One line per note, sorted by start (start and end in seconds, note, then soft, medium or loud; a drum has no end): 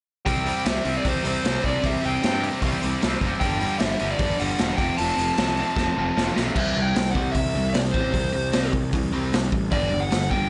0.26 0.50 C2 medium
0.26 0.45 C3 medium
0.26 0.46 G3 medium
0.26 0.46 C4 medium
0.26 0.66 G5 loud
0.26 kick medium
0.26 open hi-hat medium
0.45 0.65 C3 medium
0.45 0.66 G3 medium
0.45 0.67 C4 medium
0.45 open hi-hat soft
0.65 0.78 C2 medium
0.65 0.84 C3 medium
0.65 0.85 G3 medium
0.65 0.86 C4 loud
0.65 0.97 E5 medium
0.65 snare medium
0.65 open hi-hat medium
0.85 0.97 C2 medium
0.85 1.03 C3 medium
0.85 1.05 G3 medium
0.85 1.04 C4 medium
0.85 open hi-hat soft
0.97 1.08 D5 medium
1.04 1.17 C2 medium
1.04 1.23 C3 medium
1.04 1.24 G3 medium
1.04 1.24 C4 medium
1.04 1.27 C5 medium
1.04 kick loud
1.04 open hi-hat medium
1.24 1.37 C2 medium
1.24 1.43 C3 medium
1.24 1.44 G3 medium
1.24 1.43 C4 medium
1.24 1.65 C5 medium
1.24 open hi-hat soft
1.44 1.57 C2 medium
1.44 1.61 C3 medium
1.44 1.63 G3 loud
1.44 1.62 C4 loud
1.44 snare loud
1.44 open hi-hat medium
1.62 1.76 C2 medium
1.62 1.81 C3 medium
1.62 1.83 G3 medium
1.62 1.83 C4 medium
1.62 1.85 D5 medium
1.62 kick medium
1.62 open hi-hat soft
1.82 1.96 C2 medium
1.82 2.00 C3 medium
1.82 2.02 G3 medium
1.82 2.02 C4 medium
1.82 kick loud
1.82 open hi-hat medium
1.86 2.05 E5 medium
2.02 2.16 C2 medium
2.02 2.20 C3 medium
2.02 2.22 G3 medium
2.02 2.21 C4 loud
2.02 2.44 G5 medium
2.02 open hi-hat soft
2.21 2.48 G2 medium
2.21 2.40 C3 medium
2.21 2.40 G3 loud
2.21 2.41 C4 loud
2.21 snare loud
2.21 open hi-hat medium
2.41 2.61 C3 medium
2.41 2.61 G3 medium
2.41 2.62 C4 medium
2.41 open hi-hat soft
2.62 2.74 C2 medium
2.62 2.80 C3 medium
2.62 2.81 G3 medium
2.62 2.81 C4 medium
2.62 kick loud
2.62 open hi-hat medium
2.81 2.95 C2 medium
2.81 3.00 C3 medium
2.81 3.00 G3 medium
2.81 3.01 C4 loud
2.81 open hi-hat soft
3.01 3.15 C2 medium
3.01 3.20 C3 loud
3.01 3.21 G3 loud
3.01 3.21 C4 loud
3.01 snare medium
3.01 open hi-hat medium
3.21 3.33 F#1 medium
3.21 3.40 C3 medium
3.21 3.40 G3 medium
3.21 3.41 C4 medium
3.21 kick medium
3.21 open hi-hat soft
3.40 3.65 G1 medium
3.40 3.60 G2 medium
3.40 3.60 D3 medium
3.40 3.62 G3 medium
3.40 3.79 G5 medium
3.40 kick loud
3.40 open hi-hat medium
3.61 3.79 G2 medium
3.61 3.80 D3 medium
3.61 3.81 G3 medium
3.61 open hi-hat soft
3.79 3.94 G1 medium
3.79 3.98 G2 medium
3.79 4.00 D3 loud
3.79 4.00 G3 loud
3.79 4.10 E5 medium
3.79 snare loud
3.79 open hi-hat medium
4.00 4.13 G1 medium
4.00 4.19 G2 medium
4.00 4.19 D3 medium
4.00 4.20 G3 loud
4.00 open hi-hat soft
4.11 4.41 D5 medium
4.19 4.32 G1 medium
4.19 4.39 G2 medium
4.19 4.40 D3 medium
4.19 4.41 G3 medium
4.19 kick loud
4.19 open hi-hat medium
4.40 4.52 G1 medium
4.40 4.59 G2 medium
4.40 4.60 D3 medium
4.40 4.61 G3 medium
4.40 4.76 F#5 medium
4.40 open hi-hat medium
4.59 4.72 E1 medium
4.59 4.79 G2 loud
4.59 4.79 D3 medium
4.59 4.79 G3 loud
4.59 snare loud
4.59 open hi-hat medium
4.77 4.91 F1 medium
4.77 4.98 F2 medium
4.77 4.99 C3 medium
4.77 5.00 F3 medium
4.77 4.99 G5 medium
4.77 kick medium
4.77 open hi-hat soft
4.97 5.12 F1 medium
4.97 5.18 F2 medium
4.97 5.19 C3 medium
4.97 5.19 F3 loud
4.97 6.32 A5 medium
4.97 open hi-hat medium
5.16 5.30 F1 medium
5.16 5.37 F2 medium
5.16 5.36 C3 medium
5.16 5.37 F3 medium
5.16 open hi-hat soft
5.20 5.37 C3 medium
5.20 5.38 F3 medium
5.38 5.62 C2 medium
5.38 5.58 F2 loud
5.38 5.59 C3 medium
5.38 5.59 F3 loud
5.38 snare loud
5.38 open hi-hat medium
5.57 5.77 F2 medium
5.57 5.76 C3 medium
5.57 5.77 F3 medium
5.57 open hi-hat soft
5.76 5.89 F1 medium
5.76 5.96 F2 medium
5.76 5.97 C3 medium
5.76 5.97 F3 medium
5.76 kick loud
5.76 snare medium
5.97 6.10 F1 medium
5.97 6.14 F2 medium
5.97 6.15 C3 medium
5.97 6.16 F3 medium
6.16 6.29 F1 medium
6.16 6.34 F2 loud
6.16 6.35 C3 medium
6.16 6.35 F3 loud
6.16 snare medium
6.35 6.50 B1 medium
6.35 6.54 F2 medium
6.35 6.54 C3 medium
6.35 6.55 F3 medium
6.35 snare medium
6.55 6.74 C2 medium
6.55 6.74 C3 medium
6.55 6.74 G3 loud
6.55 6.75 C4 loud
6.55 6.82 E5 medium
6.55 kick loud
6.55 crash loud
6.75 6.94 C2 medium
6.75 6.93 C3 medium
6.75 6.94 G3 medium
6.82 7.11 G5 loud
6.95 7.14 C2 medium
6.95 7.13 C3 medium
6.95 7.13 G3 medium
6.95 snare loud
6.95 open hi-hat medium
7.11 7.33 C3 medium
7.11 7.32 F#5 medium
7.15 7.33 C2 medium
7.15 7.34 G3 medium
7.15 7.34 C4 loud
7.15 kick medium
7.32 7.53 C2 medium
7.32 7.53 C3 medium
7.32 7.53 G3 medium
7.32 7.74 E5 medium
7.32 kick loud
7.32 open hi-hat medium
7.55 7.73 C2 medium
7.55 7.73 C3 medium
7.55 7.74 G3 medium
7.74 7.93 C2 medium
7.74 7.93 C3 medium
7.74 7.93 G3 medium
7.74 7.79 D5 medium
7.74 snare loud
7.74 open hi-hat medium
7.91 8.12 A1 medium
7.91 8.12 C3 medium
7.91 8.13 G3 medium
7.91 8.13 C4 medium
7.91 8.72 C5 medium
7.91 kick medium
8.13 8.32 C2 medium
8.13 8.31 C3 medium
8.13 8.32 G3 medium
8.13 kick loud
8.13 open hi-hat soft
8.33 8.52 C2 medium
8.33 8.51 C3 medium
8.33 8.52 G3 medium
8.52 8.72 C2 medium
8.52 8.71 C3 loud
8.52 8.72 G3 medium
8.52 8.72 C4 loud
8.52 snare loud
8.52 open hi-hat medium
8.73 8.91 C2 medium
8.73 8.91 C3 medium
8.73 8.91 G3 medium
8.73 kick medium
8.93 9.11 C2 medium
8.93 9.11 C3 medium
8.93 9.12 G3 medium
8.93 kick loud
8.93 open hi-hat medium
9.13 9.31 C2 medium
9.13 9.31 C3 medium
9.13 9.32 G3 medium
9.13 9.32 C4 medium
9.33 9.51 C2 medium
9.33 9.51 C3 medium
9.33 9.51 G3 medium
9.33 snare loud
9.33 open hi-hat medium
9.52 9.70 A1 medium
9.52 9.70 C3 medium
9.52 9.70 G3 medium
9.52 kick medium
9.71 9.90 G1 medium
9.71 9.90 G2 medium
9.71 9.91 D3 medium
9.71 9.91 G3 loud
9.71 10.02 D5 medium
9.71 kick loud
9.71 open hi-hat medium
9.91 10.09 G1 medium
9.91 10.09 G2 medium
9.91 10.09 D3 medium
10.00 10.30 F#5 loud
10.11 10.29 G1 medium
10.11 10.29 G2 medium
10.11 10.29 D3 medium
10.11 snare loud
10.11 open hi-hat medium
10.30 10.49 G1 medium
10.30 10.49 G2 medium
10.30 10.49 D3 medium
10.30 10.49 G3 loud
10.30 10.49 G5 medium
10.30 kick medium